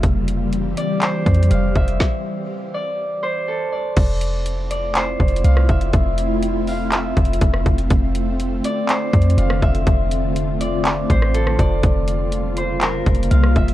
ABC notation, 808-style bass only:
X:1
M:4/4
L:1/8
Q:1/4=122
K:F
V:1 name="808-style bass" clef=bass
F,,,3 z2 F,, F,,, F,,, | z8 | F,,,4- F,,, F,,, C,, F,,, | F,,,4- F,,, F,,, F,,, F,,, |
F,,,3 z2 F,, F,,, F,,, | F,,,4- F,,, A,,,2 F,,, | F,,,4- F,,, F,,, C,, F,,, |]